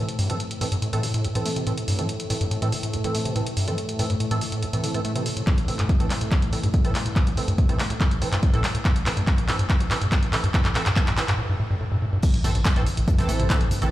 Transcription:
Already playing: A2 A3
0.09 closed hi-hat
0.19 G2, open hi-hat
0.30 E3 G3 C4 A4, closed hi-hat
0.40 closed hi-hat
0.51 closed hi-hat
0.61 A2 E3 C4 A4, open hi-hat
0.72 G2, closed hi-hat
0.82 A2, closed hi-hat
0.93 A2 E3 C4 A4, closed hi-hat
1.03 G3, open hi-hat
1.14 A2, closed hi-hat
1.24 A1, closed hi-hat
1.35 A2 E3 C4 A4, closed hi-hat
1.46 A3, open hi-hat
1.56 C3, closed hi-hat
1.67 A2 E3 C4 A4, closed hi-hat
1.78 closed hi-hat
1.88 G2, open hi-hat
1.99 E3 G3 C4 A4, closed hi-hat
2.09 closed hi-hat
2.20 closed hi-hat
2.30 A2 E3 C4 A4, open hi-hat
2.41 G2, closed hi-hat
2.51 A2, closed hi-hat
2.62 A2 E3 C4 A4, closed hi-hat
2.72 G3, open hi-hat
2.83 A2, closed hi-hat
2.93 A1, closed hi-hat
3.04 A2 E3 C4 A4, closed hi-hat
3.15 A3, open hi-hat
3.25 C3, closed hi-hat
3.36 A2 E3 C4 A4, closed hi-hat
3.46 closed hi-hat
3.57 G2, open hi-hat
3.68 E3 G3 C4 A4, closed hi-hat
3.78 closed hi-hat
3.89 closed hi-hat
3.99 A2 E3 C4 A4, open hi-hat
4.10 G2, closed hi-hat
4.20 A2, closed hi-hat
4.31 A2 E3 C4 A4, closed hi-hat
4.41 G3, open hi-hat
4.52 A2, closed hi-hat
4.63 A1, closed hi-hat
4.73 A2 E3 C4 A4, closed hi-hat
4.84 D3, open hi-hat
4.94 A2 E3 C4 A4, closed hi-hat
5.05 A3, closed hi-hat
5.16 C3 E3 C4 A4, closed hi-hat
5.26 G2, open hi-hat
5.37 A2, closed hi-hat
5.47 kick, clap, closed hi-hat
5.58 closed hi-hat
5.68 A2 E3 C4 A4, mid tom, open hi-hat
5.79 G2, clap, closed hi-hat
5.89 A2, kick, closed hi-hat
6.00 A2 E3 C4 A4, closed hi-hat, mid tom
6.10 G3, clap, open hi-hat
6.21 A2, closed hi-hat
6.32 kick, clap, closed hi-hat, mid tom
6.42 closed hi-hat
6.53 A2 E3 C4 A4, open hi-hat
6.63 G2, closed hi-hat, mid tom
6.74 A2, kick, closed hi-hat
6.85 A2 E3 C4 A4, closed hi-hat
6.95 G3, clap, mid tom, open hi-hat
7.06 A2, closed hi-hat
7.16 kick, clap, closed hi-hat
7.27 closed hi-hat, mid tom
7.37 A2 E3 C4 A4, open hi-hat
7.48 G2, closed hi-hat
7.58 A2, kick, closed hi-hat, mid tom
7.69 A2 E3 C4 A4, closed hi-hat
7.79 G3, clap, open hi-hat
7.90 A2, closed hi-hat, mid tom
8.01 kick, clap, closed hi-hat
8.11 closed hi-hat
8.22 A2 E3 C4 A4, mid tom, open hi-hat
8.32 G2, clap, closed hi-hat
8.43 A2, kick, closed hi-hat
8.54 A2 E3 C4 A4, closed hi-hat, mid tom
8.64 G3, clap, open hi-hat
8.75 A2, closed hi-hat
8.85 kick, clap, closed hi-hat, mid tom
8.96 closed hi-hat
9.06 A2 E3 C4 A4, clap, open hi-hat
9.17 G2, closed hi-hat, mid tom
9.27 kick, clap, closed hi-hat
9.38 closed hi-hat
9.48 A2 E3 C4 A4, clap, mid tom, open hi-hat
9.59 G2, closed hi-hat
9.70 kick, clap, closed hi-hat
9.80 closed hi-hat, mid tom
9.91 A2 E3 C4 A4, clap, open hi-hat
10.02 G2, closed hi-hat
10.12 kick, clap, closed hi-hat, mid tom
10.23 closed hi-hat
10.33 A2 E3 C4 A4, clap, open hi-hat
10.44 G2, closed hi-hat, mid tom
10.54 A2 E3 C4 A4, kick, clap, closed hi-hat
10.65 G2, clap, closed hi-hat
10.75 A2 E3 C4 A4, clap, mid tom, open hi-hat
10.86 G2, clap, closed hi-hat
10.96 A2 E3 C4 A4, kick, clap, closed hi-hat
11.07 G2, clap, closed hi-hat, mid tom
11.17 A2 E3 C4 A4, clap, open hi-hat
11.28 G2, clap, closed hi-hat
11.39 A2
11.49 G2
11.60 A2
11.71 G2
11.81 A2
11.92 G2
12.02 A2
12.13 G2
12.23 A2 A3, kick, closed hi-hat, crash
12.34 closed hi-hat
12.44 A1 A2 E3 C4 A4, closed hi-hat, mid tom, open hi-hat
12.55 A1 G2, closed hi-hat
12.65 A2, kick, snare, clap, closed hi-hat
12.76 A1 A2 E3 C4 A4, closed hi-hat, mid tom
12.86 G3, closed hi-hat, open hi-hat
12.97 A1 A2, closed hi-hat
13.08 A2, kick, closed hi-hat, mid tom
13.18 A2 E3 C4 A4, snare, closed hi-hat
13.29 A1 A3, closed hi-hat, open hi-hat
13.40 A1 C3, closed hi-hat, mid tom
13.50 A2 E3 C4 A4, kick, snare, clap, closed hi-hat
13.61 A1, closed hi-hat
13.71 G2, closed hi-hat, mid tom, open hi-hat
13.82 A1 E3 G3 C4 A4, closed hi-hat

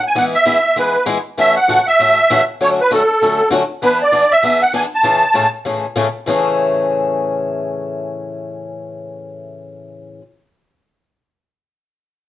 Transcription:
0.07 G#5
0.15 E3 G#3 B3 E4 G#4 F#5
0.35 E5
0.45 E3 G#3 B3 E4 G#4
0.76 E3 G#3 B3 E4 G#4 B4
1.06 E3 G#3 B3 E4 G#4
1.38 A2 C#3 E3 A3 C#4 F#4 E5
1.56 F#5
1.68 A2 C#3 E3 A3 C#4 F#4
1.87 E5
1.99 A2 C#3 E3 A3 C#4 F#4
2.30 A2 C#3 E3 A3 C#4 F#4
2.61 D3 F#3 A3 C#4 F#4 C#5
2.81 B4
2.91 D3 F#3 A3 C#4 F#4 A4
3.22 D3 F#3 A3 C#4 F#4
3.51 D3 F#3 A3 C#4 F#4
3.82 E3 B3 D4 G#4 B4
4.02 D5
4.12 E3 B3 D4 G#4
4.31 E5
4.43 E3 B3 D4 G#4
4.62 F#5
4.73 E3 B3 D4 G#4 G#5
4.94 A5
5.03 A2 C#3 E3 A3 C#4 G#4
5.34 A2 C#3 E3 A3 C#4 G#4
5.65 A2 C#3 E3 A3 C#4 G#4
5.96 A2 C#3 E3 A3 C#4 G#4
6.26 A2 C#3 E3 A3 C#4 G#4

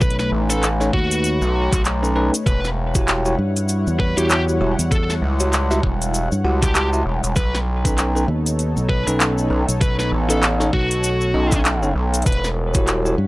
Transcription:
Already playing: B1 A3 D#4 B4 C#5
0.01 B4, kick, cabasa
0.10 closed hi-hat
0.19 B4, snare, cabasa
0.32 A1
0.50 C#4 D#4 A4 B4, closed hi-hat, cabasa
0.63 clap, closed hi-hat, cabasa
0.80 C#4 D#4 A4 C#5, snare, cabasa
0.93 D#2 F#4, kick
1.11 closed hi-hat, cabasa
1.24 closed hi-hat, cabasa
1.42 B1, cabasa
1.73 B1, kick, clap, closed hi-hat, cabasa
1.85 clap, closed hi-hat, cabasa
2.03 C#4 D#4 A4 B4, cabasa
2.16 C#4 D#4 A4 B4
2.34 closed hi-hat, cabasa
2.46 E1 G3 E4 B4 F#5, kick, closed hi-hat, cabasa
2.64 snare, cabasa
2.95 E4 F#4 G4 C#5, kick, closed hi-hat, cabasa
3.08 clap, closed hi-hat, cabasa
3.25 E4 F#4 G4 C#5, cabasa
3.39 G2
3.56 closed hi-hat, cabasa
3.69 closed hi-hat, cabasa
3.87 E2, cabasa
4.00 B4, kick
4.17 E2 E4 F#4 G4 C#5, closed hi-hat, cabasa
4.30 G4, clap, closed hi-hat, cabasa
4.49 cabasa
4.61 E1 E4 F#4 G4 C#5
4.79 E2, closed hi-hat, cabasa
4.92 A4, kick, closed hi-hat, cabasa
5.10 snare, cabasa
5.22 C#2
5.40 E4 F#4 G4 C#5, closed hi-hat, cabasa
5.53 clap, closed hi-hat, cabasa
5.71 E4 F#4 G4 E5, snare, cabasa
5.83 E1, kick
6.02 closed hi-hat, cabasa
6.14 closed hi-hat, cabasa
6.32 G2, cabasa
6.44 C#2 E4 F#4 G4 F#5
6.63 G4, kick, clap, closed hi-hat, cabasa
6.75 G4, clap, closed hi-hat, cabasa
6.93 E4 F#4 G4 E5, cabasa
7.06 E1
7.24 E1, closed hi-hat, cabasa
7.36 B1 B3 D#4 A4 B4 C#5, kick, closed hi-hat, cabasa
7.55 snare, cabasa
7.85 C#4 D#4 A4 B4, kick, closed hi-hat, cabasa
7.98 clap, closed hi-hat, cabasa
8.15 C#4 D#4 A4 B4, cabasa
8.28 D#2
8.46 closed hi-hat, cabasa
8.59 closed hi-hat, cabasa
8.77 B1, cabasa
8.89 B4, kick
9.07 B1 C#4 D#4 A4 B4, closed hi-hat, cabasa
9.20 clap, closed hi-hat, cabasa
9.38 cabasa
9.50 B1 C#4 D#4 A4 B4
9.69 B1, closed hi-hat, cabasa
9.81 B4, kick, closed hi-hat, cabasa
9.99 B4, snare, cabasa
10.12 A1
10.30 C#4 D#4 A4 B4, closed hi-hat, cabasa
10.43 clap, closed hi-hat, cabasa
10.60 C#4 D#4 A4 C#5, snare, cabasa
10.73 B1 F#4, kick
10.91 closed hi-hat, cabasa
11.04 closed hi-hat, cabasa
11.21 cabasa
11.34 B1 C#4 D#4 A4 D#5
11.52 kick, clap, closed hi-hat, cabasa
11.65 clap, closed hi-hat, cabasa
11.83 C#4 D#4 A4 C#5, cabasa
11.95 B1
12.14 closed hi-hat, cabasa
12.22 closed hi-hat
12.26 E1 G3 E4 B4 C#5 F#5, kick, closed hi-hat, cabasa
12.32 closed hi-hat
12.44 snare, cabasa
12.74 E4 F#4 G4 C#5, kick, closed hi-hat, cabasa
12.87 clap, closed hi-hat, cabasa
13.05 E4 F#4 G4 C#5, cabasa
13.18 G2

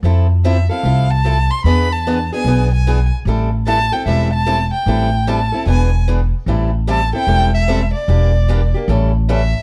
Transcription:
0.03 F2 F3 C4 E4 A4
0.45 F3 C4 E4 A4 E5
0.69 C4 E4 A4 F5
0.83 C2 F3 C4 E4 A4
1.11 A5
1.25 F3 C4 E4 A4
1.50 C6
1.64 E2 E3 B3 D4 G#4 B5
1.93 A5
2.07 E3 B3 D4 G#4
2.32 B3 D4 G#4 G#5
2.44 B1 E3 B3 D4 G#4
2.74 G#5
2.87 E3 B3 D4 G#4
3.25 A1 E3 G3 C4 E4 A4
3.67 E3 G3 C4 E4 A4 A5
3.92 C4 E4 A4 G5
4.06 E1 E3 G3 C4 E4 A4 E5
4.34 A5
4.46 E3 G3 C4 E4 A4
4.74 G5
4.86 A1 E3 G3 C4 E4 A4
5.27 E3 G3 C4 E4 A4 A5
5.52 C4 E4 A4
5.66 E1 E3 B3 D4 G#4 G#5
6.08 E3 B3 D4 G#4
6.46 A1 E3 G3 C4 E4 A4
6.87 E3 G3 C4 E4 A4 A5
7.13 C4 E4 A4 G5
7.27 E1 E3 G3 C4 E4 A4
7.54 E5
7.68 E3 G3 C4 E4 A4
7.94 D5
8.08 E1 E3 A#3 D4 G4
8.48 E3 A#3 D4 G4
8.74 A#3 D4 G4
8.88 A1 E3 G3 C#4 E4 A4
9.29 E3 G3 C#4 E4 A4 E5

